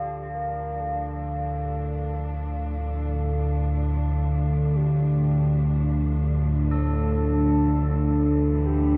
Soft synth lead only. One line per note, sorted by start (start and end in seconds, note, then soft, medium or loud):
0.00 0.36 A4 loud
0.34 0.81 A#4 loud
0.80 2.77 A4 loud
2.78 4.77 A4 loud
4.76 6.23 G4 medium
6.65 8.68 A4 loud
6.65 6.70 A#4 medium
8.66 8.97 G4 loud